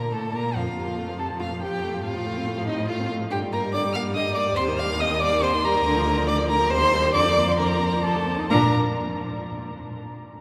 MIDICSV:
0, 0, Header, 1, 5, 480
1, 0, Start_track
1, 0, Key_signature, -2, "major"
1, 0, Tempo, 423729
1, 873, Time_signature, 3, 2, 24, 8
1, 7112, Tempo, 444444
1, 11572, End_track
2, 0, Start_track
2, 0, Title_t, "Violin"
2, 0, Program_c, 0, 40
2, 0, Note_on_c, 0, 82, 53
2, 154, Note_on_c, 0, 81, 63
2, 171, Note_off_c, 0, 82, 0
2, 403, Note_on_c, 0, 82, 77
2, 420, Note_off_c, 0, 81, 0
2, 629, Note_on_c, 0, 77, 66
2, 646, Note_off_c, 0, 82, 0
2, 1352, Note_on_c, 0, 81, 65
2, 1369, Note_off_c, 0, 77, 0
2, 1588, Note_off_c, 0, 81, 0
2, 1595, Note_on_c, 0, 77, 65
2, 1834, Note_off_c, 0, 77, 0
2, 1840, Note_on_c, 0, 79, 71
2, 2309, Note_off_c, 0, 79, 0
2, 2316, Note_on_c, 0, 77, 71
2, 3046, Note_on_c, 0, 75, 73
2, 3063, Note_off_c, 0, 77, 0
2, 3274, Note_on_c, 0, 77, 81
2, 3291, Note_off_c, 0, 75, 0
2, 3512, Note_off_c, 0, 77, 0
2, 3753, Note_on_c, 0, 79, 82
2, 3844, Note_off_c, 0, 79, 0
2, 3993, Note_on_c, 0, 82, 83
2, 4084, Note_off_c, 0, 82, 0
2, 4223, Note_on_c, 0, 86, 104
2, 4450, Note_off_c, 0, 86, 0
2, 4456, Note_on_c, 0, 89, 91
2, 4547, Note_off_c, 0, 89, 0
2, 4693, Note_on_c, 0, 87, 94
2, 4918, Note_off_c, 0, 87, 0
2, 4925, Note_on_c, 0, 86, 96
2, 5016, Note_off_c, 0, 86, 0
2, 5166, Note_on_c, 0, 84, 113
2, 5256, Note_off_c, 0, 84, 0
2, 5407, Note_on_c, 0, 89, 90
2, 5663, Note_on_c, 0, 87, 97
2, 5680, Note_off_c, 0, 89, 0
2, 5896, Note_on_c, 0, 86, 101
2, 5913, Note_off_c, 0, 87, 0
2, 6157, Note_on_c, 0, 84, 116
2, 6174, Note_off_c, 0, 86, 0
2, 6390, Note_on_c, 0, 82, 107
2, 6407, Note_off_c, 0, 84, 0
2, 7106, Note_off_c, 0, 82, 0
2, 7113, Note_on_c, 0, 86, 114
2, 7199, Note_off_c, 0, 86, 0
2, 7342, Note_on_c, 0, 82, 101
2, 7573, Note_off_c, 0, 82, 0
2, 7582, Note_on_c, 0, 84, 119
2, 8032, Note_off_c, 0, 84, 0
2, 8039, Note_on_c, 0, 86, 96
2, 8453, Note_on_c, 0, 84, 77
2, 8469, Note_off_c, 0, 86, 0
2, 8526, Note_on_c, 0, 82, 97
2, 8542, Note_off_c, 0, 84, 0
2, 9010, Note_on_c, 0, 81, 97
2, 9026, Note_off_c, 0, 82, 0
2, 9502, Note_off_c, 0, 81, 0
2, 9508, Note_on_c, 0, 82, 107
2, 9779, Note_off_c, 0, 82, 0
2, 11572, End_track
3, 0, Start_track
3, 0, Title_t, "Violin"
3, 0, Program_c, 1, 40
3, 0, Note_on_c, 1, 70, 57
3, 143, Note_on_c, 1, 69, 56
3, 160, Note_off_c, 1, 70, 0
3, 373, Note_on_c, 1, 70, 55
3, 390, Note_off_c, 1, 69, 0
3, 610, Note_off_c, 1, 70, 0
3, 617, Note_on_c, 1, 65, 53
3, 1334, Note_off_c, 1, 65, 0
3, 1343, Note_on_c, 1, 69, 63
3, 1434, Note_off_c, 1, 69, 0
3, 1580, Note_on_c, 1, 65, 61
3, 1671, Note_off_c, 1, 65, 0
3, 1829, Note_on_c, 1, 67, 63
3, 2306, Note_off_c, 1, 67, 0
3, 2315, Note_on_c, 1, 65, 75
3, 3016, Note_off_c, 1, 65, 0
3, 3023, Note_on_c, 1, 63, 69
3, 3260, Note_off_c, 1, 63, 0
3, 3266, Note_on_c, 1, 65, 74
3, 3503, Note_off_c, 1, 65, 0
3, 3745, Note_on_c, 1, 67, 77
3, 3836, Note_off_c, 1, 67, 0
3, 3995, Note_on_c, 1, 70, 72
3, 4227, Note_off_c, 1, 70, 0
3, 4234, Note_on_c, 1, 74, 86
3, 4325, Note_off_c, 1, 74, 0
3, 4467, Note_on_c, 1, 77, 88
3, 4558, Note_off_c, 1, 77, 0
3, 4708, Note_on_c, 1, 75, 77
3, 4928, Note_off_c, 1, 75, 0
3, 4935, Note_on_c, 1, 74, 91
3, 5172, Note_off_c, 1, 74, 0
3, 5185, Note_on_c, 1, 72, 87
3, 5431, Note_on_c, 1, 77, 86
3, 5448, Note_off_c, 1, 72, 0
3, 5669, Note_on_c, 1, 75, 87
3, 5686, Note_off_c, 1, 77, 0
3, 5905, Note_off_c, 1, 75, 0
3, 5912, Note_on_c, 1, 74, 103
3, 6140, Note_off_c, 1, 74, 0
3, 6147, Note_on_c, 1, 72, 95
3, 6237, Note_off_c, 1, 72, 0
3, 6379, Note_on_c, 1, 70, 98
3, 7102, Note_on_c, 1, 74, 94
3, 7119, Note_off_c, 1, 70, 0
3, 7340, Note_off_c, 1, 74, 0
3, 7346, Note_on_c, 1, 70, 102
3, 7570, Note_on_c, 1, 72, 108
3, 7586, Note_off_c, 1, 70, 0
3, 8041, Note_off_c, 1, 72, 0
3, 8047, Note_on_c, 1, 74, 107
3, 8514, Note_off_c, 1, 74, 0
3, 8529, Note_on_c, 1, 70, 79
3, 9003, Note_off_c, 1, 70, 0
3, 9015, Note_on_c, 1, 69, 77
3, 9492, Note_off_c, 1, 69, 0
3, 9499, Note_on_c, 1, 70, 84
3, 9774, Note_off_c, 1, 70, 0
3, 11572, End_track
4, 0, Start_track
4, 0, Title_t, "Viola"
4, 0, Program_c, 2, 41
4, 0, Note_on_c, 2, 58, 64
4, 153, Note_off_c, 2, 58, 0
4, 158, Note_on_c, 2, 57, 49
4, 383, Note_off_c, 2, 57, 0
4, 390, Note_on_c, 2, 58, 62
4, 620, Note_off_c, 2, 58, 0
4, 626, Note_on_c, 2, 53, 55
4, 717, Note_off_c, 2, 53, 0
4, 867, Note_on_c, 2, 48, 48
4, 990, Note_on_c, 2, 53, 40
4, 1007, Note_off_c, 2, 48, 0
4, 1114, Note_on_c, 2, 57, 51
4, 1131, Note_off_c, 2, 53, 0
4, 1235, Note_on_c, 2, 53, 41
4, 1252, Note_off_c, 2, 57, 0
4, 1350, Note_on_c, 2, 48, 49
4, 1367, Note_off_c, 2, 53, 0
4, 1474, Note_on_c, 2, 53, 49
4, 1491, Note_off_c, 2, 48, 0
4, 1596, Note_on_c, 2, 57, 42
4, 1613, Note_off_c, 2, 53, 0
4, 1723, Note_on_c, 2, 53, 49
4, 1740, Note_off_c, 2, 57, 0
4, 1845, Note_on_c, 2, 48, 52
4, 1862, Note_off_c, 2, 53, 0
4, 1968, Note_on_c, 2, 53, 45
4, 1985, Note_off_c, 2, 48, 0
4, 2081, Note_on_c, 2, 57, 55
4, 2098, Note_off_c, 2, 53, 0
4, 2206, Note_on_c, 2, 53, 48
4, 2223, Note_off_c, 2, 57, 0
4, 2310, Note_off_c, 2, 53, 0
4, 2316, Note_on_c, 2, 48, 58
4, 2438, Note_on_c, 2, 53, 50
4, 2455, Note_off_c, 2, 48, 0
4, 2563, Note_on_c, 2, 57, 59
4, 2580, Note_off_c, 2, 53, 0
4, 2688, Note_on_c, 2, 60, 50
4, 2705, Note_off_c, 2, 57, 0
4, 2804, Note_on_c, 2, 57, 56
4, 2821, Note_off_c, 2, 60, 0
4, 2923, Note_on_c, 2, 53, 52
4, 2940, Note_off_c, 2, 57, 0
4, 3036, Note_on_c, 2, 48, 54
4, 3053, Note_off_c, 2, 53, 0
4, 3159, Note_on_c, 2, 53, 59
4, 3176, Note_off_c, 2, 48, 0
4, 3276, Note_on_c, 2, 57, 58
4, 3293, Note_off_c, 2, 53, 0
4, 3392, Note_on_c, 2, 60, 53
4, 3409, Note_off_c, 2, 57, 0
4, 3518, Note_on_c, 2, 57, 55
4, 3535, Note_off_c, 2, 60, 0
4, 3640, Note_on_c, 2, 53, 49
4, 3657, Note_off_c, 2, 57, 0
4, 3747, Note_off_c, 2, 53, 0
4, 3753, Note_on_c, 2, 50, 64
4, 3877, Note_on_c, 2, 55, 59
4, 3894, Note_off_c, 2, 50, 0
4, 3996, Note_on_c, 2, 58, 63
4, 4013, Note_off_c, 2, 55, 0
4, 4109, Note_on_c, 2, 55, 56
4, 4126, Note_off_c, 2, 58, 0
4, 4239, Note_on_c, 2, 50, 70
4, 4256, Note_off_c, 2, 55, 0
4, 4356, Note_on_c, 2, 55, 60
4, 4373, Note_off_c, 2, 50, 0
4, 4472, Note_on_c, 2, 58, 60
4, 4489, Note_off_c, 2, 55, 0
4, 4584, Note_on_c, 2, 55, 69
4, 4601, Note_off_c, 2, 58, 0
4, 4705, Note_on_c, 2, 50, 65
4, 4722, Note_off_c, 2, 55, 0
4, 4829, Note_on_c, 2, 55, 54
4, 4846, Note_off_c, 2, 50, 0
4, 4942, Note_on_c, 2, 58, 66
4, 4959, Note_off_c, 2, 55, 0
4, 5063, Note_on_c, 2, 55, 65
4, 5080, Note_off_c, 2, 58, 0
4, 5181, Note_off_c, 2, 55, 0
4, 5192, Note_on_c, 2, 48, 87
4, 5303, Note_on_c, 2, 51, 69
4, 5320, Note_off_c, 2, 48, 0
4, 5428, Note_on_c, 2, 55, 70
4, 5445, Note_off_c, 2, 51, 0
4, 5550, Note_on_c, 2, 51, 73
4, 5567, Note_off_c, 2, 55, 0
4, 5676, Note_on_c, 2, 48, 76
4, 5693, Note_off_c, 2, 51, 0
4, 5791, Note_on_c, 2, 51, 67
4, 5808, Note_off_c, 2, 48, 0
4, 5910, Note_on_c, 2, 55, 64
4, 5927, Note_off_c, 2, 51, 0
4, 6028, Note_on_c, 2, 51, 80
4, 6045, Note_off_c, 2, 55, 0
4, 6148, Note_on_c, 2, 48, 73
4, 6165, Note_off_c, 2, 51, 0
4, 6274, Note_on_c, 2, 51, 70
4, 6291, Note_off_c, 2, 48, 0
4, 6395, Note_on_c, 2, 55, 73
4, 6412, Note_off_c, 2, 51, 0
4, 6517, Note_on_c, 2, 51, 68
4, 6534, Note_off_c, 2, 55, 0
4, 6628, Note_off_c, 2, 51, 0
4, 6635, Note_on_c, 2, 50, 95
4, 6758, Note_on_c, 2, 53, 70
4, 6775, Note_off_c, 2, 50, 0
4, 6877, Note_on_c, 2, 50, 88
4, 6894, Note_off_c, 2, 53, 0
4, 6997, Note_on_c, 2, 53, 69
4, 7014, Note_off_c, 2, 50, 0
4, 7115, Note_on_c, 2, 50, 78
4, 7132, Note_off_c, 2, 53, 0
4, 7232, Note_on_c, 2, 53, 71
4, 7249, Note_off_c, 2, 50, 0
4, 7346, Note_on_c, 2, 50, 70
4, 7362, Note_off_c, 2, 53, 0
4, 7467, Note_on_c, 2, 53, 76
4, 7484, Note_off_c, 2, 50, 0
4, 7582, Note_off_c, 2, 53, 0
4, 7586, Note_on_c, 2, 48, 67
4, 7695, Note_on_c, 2, 51, 69
4, 7711, Note_off_c, 2, 48, 0
4, 7813, Note_on_c, 2, 55, 74
4, 7829, Note_off_c, 2, 51, 0
4, 7939, Note_on_c, 2, 51, 64
4, 7955, Note_off_c, 2, 55, 0
4, 8043, Note_off_c, 2, 51, 0
4, 8049, Note_on_c, 2, 50, 92
4, 8170, Note_on_c, 2, 53, 60
4, 8186, Note_off_c, 2, 50, 0
4, 8291, Note_on_c, 2, 58, 73
4, 8307, Note_off_c, 2, 53, 0
4, 8405, Note_on_c, 2, 53, 66
4, 8421, Note_off_c, 2, 58, 0
4, 8523, Note_on_c, 2, 50, 71
4, 8539, Note_off_c, 2, 53, 0
4, 8642, Note_on_c, 2, 53, 61
4, 8658, Note_off_c, 2, 50, 0
4, 8763, Note_on_c, 2, 58, 65
4, 8779, Note_off_c, 2, 53, 0
4, 8890, Note_on_c, 2, 53, 62
4, 8906, Note_off_c, 2, 58, 0
4, 9011, Note_off_c, 2, 53, 0
4, 9017, Note_on_c, 2, 53, 64
4, 9141, Note_on_c, 2, 57, 59
4, 9157, Note_off_c, 2, 53, 0
4, 9267, Note_on_c, 2, 60, 68
4, 9283, Note_off_c, 2, 57, 0
4, 9393, Note_on_c, 2, 63, 61
4, 9409, Note_off_c, 2, 60, 0
4, 9505, Note_off_c, 2, 63, 0
4, 9512, Note_on_c, 2, 62, 86
4, 9780, Note_off_c, 2, 62, 0
4, 11572, End_track
5, 0, Start_track
5, 0, Title_t, "Cello"
5, 0, Program_c, 3, 42
5, 0, Note_on_c, 3, 46, 60
5, 153, Note_on_c, 3, 45, 58
5, 170, Note_off_c, 3, 46, 0
5, 397, Note_on_c, 3, 46, 64
5, 414, Note_off_c, 3, 45, 0
5, 627, Note_on_c, 3, 41, 61
5, 644, Note_off_c, 3, 46, 0
5, 866, Note_off_c, 3, 41, 0
5, 873, Note_on_c, 3, 41, 53
5, 2318, Note_on_c, 3, 45, 65
5, 2335, Note_off_c, 3, 41, 0
5, 3755, Note_on_c, 3, 43, 64
5, 3772, Note_off_c, 3, 45, 0
5, 5165, Note_off_c, 3, 43, 0
5, 5172, Note_on_c, 3, 39, 84
5, 6595, Note_off_c, 3, 39, 0
5, 6623, Note_on_c, 3, 38, 79
5, 7571, Note_on_c, 3, 39, 90
5, 7588, Note_off_c, 3, 38, 0
5, 8045, Note_on_c, 3, 41, 83
5, 8061, Note_off_c, 3, 39, 0
5, 9278, Note_off_c, 3, 41, 0
5, 9515, Note_on_c, 3, 46, 100
5, 9782, Note_off_c, 3, 46, 0
5, 11572, End_track
0, 0, End_of_file